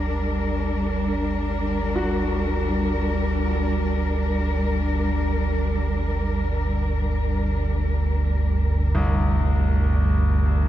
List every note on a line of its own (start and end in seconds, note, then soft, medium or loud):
0.00 10.69 G1 medium
0.00 10.69 D2 medium
0.00 10.69 G3 medium
0.00 10.69 D4 medium
0.00 10.69 A#4 medium
1.95 7.96 F#4 medium
8.95 10.69 C2 medium